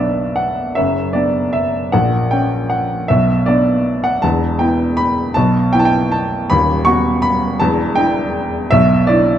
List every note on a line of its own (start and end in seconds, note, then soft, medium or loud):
0.00 0.79 B1 soft
0.00 0.79 B2 soft
0.00 0.73 B3 soft
0.00 0.73 D4 soft
0.00 0.37 D5 soft
0.00 0.75 E5 medium
0.36 0.76 F#5 medium
0.75 1.14 F#1 soft
0.75 1.14 F#2 soft
0.75 1.14 E5 medium
1.13 1.89 B3 soft
1.13 1.89 D4 soft
1.13 1.53 D5 medium
1.53 1.92 E5 medium
1.92 2.31 A#1 soft
1.92 2.31 A#2 soft
1.92 2.32 F#5 medium
2.31 3.05 C#4 soft
2.31 2.71 G5 medium
2.70 3.08 F#5 medium
3.08 3.47 B1 soft
3.08 3.46 B2 soft
3.08 3.47 E5 medium
3.46 4.20 B3 soft
3.46 4.20 D4 soft
3.46 4.05 D5 medium
4.04 4.23 F#5 medium
4.22 4.59 E1 soft
4.22 4.59 E2 soft
4.22 4.59 A5 medium
4.59 5.31 B3 soft
4.59 5.31 E4 soft
4.59 4.97 G5 medium
4.97 5.35 B5 medium
5.34 5.72 B1 soft
5.34 5.72 B2 medium
5.34 5.72 A5 medium
5.73 6.46 B3 soft
5.73 6.46 E4 soft
5.73 5.79 G5 medium
5.79 5.86 A5 medium
5.85 6.11 G5 medium
6.12 6.49 A5 medium
6.50 6.85 D#1 medium
6.50 6.85 D#2 soft
6.50 6.85 B5 medium
6.85 7.57 B3 soft
6.85 7.58 F#4 soft
6.85 7.23 C#6 medium
7.22 7.60 B5 medium
7.60 7.96 E1 medium
7.60 7.96 E2 medium
7.60 7.97 A5 medium
7.95 8.68 D4 soft
7.95 8.68 E4 soft
7.95 8.53 G5 medium
8.71 9.07 B1 medium
8.71 9.07 B2 medium
8.71 9.08 E5 medium
9.07 9.38 D4 soft
9.07 9.38 E4 soft
9.07 9.38 D5 medium